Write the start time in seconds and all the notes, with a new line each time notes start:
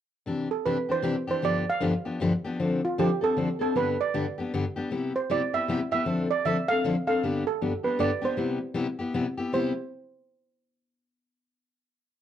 0.26 C3 E3 D4 G4
0.51 A4
0.66 C3 E3 D4 G4 B4
0.89 E3 D4 G4 C5
1.02 C3 E3 D4 G4
1.27 E3 D4 G4 C5
1.42 G2 D3 F3 B3 D4 G4 D5
1.69 F5
1.80 G2 D3 F3 B3 D4 G4
2.05 F3 B3 D4 G4
2.20 G2 D3 F3 B3 D4 G4
2.44 F3 B3 D4 G4
2.59 D3 F3 C4 D4 A4
2.85 F4
2.98 D3 F3 C4 D4 G4 A4
3.21 C4 D4 A4
3.37 D3 F3 C4 D4 A4
3.59 C4 D4 A4
3.75 G2 D3 G3 B3 D4 G4 B4
4.01 D5
4.14 G2 D3 G3 B3 D4 G4
4.38 G3 B3 D4 G4
4.54 G2 D3 G3 B3 D4 G4
4.76 G3 B3 D4 G4
4.91 C3 G3 B3 E4 G4
5.16 C5
5.30 C3 G3 B3 E4 G4 D5
5.53 B3 E4 G4 E5
5.68 C3 G3 B3 E4 G4
5.91 B3 E4 G4 E5
6.05 D3 F3 C4 D4 A4
6.31 D5
6.45 D3 F3 C4 D4 A4 E5
6.69 C4 D4 A4 F5
6.84 D3 F3 C4 D4 A4
7.07 C4 D4 A4 F5
7.23 G2 D3 G3 B3 D4 G4
7.47 A4
7.62 G2 D3 G3 B3 D4 G4
7.83 G3 B3 D4 G4 B4
7.99 G2 D3 G3 B3 D4 G4 D5
8.21 G3 B3 D4 G4 C5
8.37 C3 G3 B3 E4 G4
8.74 C3 G3 B3 E4 G4
8.99 B3 E4 G4
9.14 C3 G3 B3 E4 G4
9.37 B3 E4 G4
9.52 C3 G3 B3 E4 G4 C5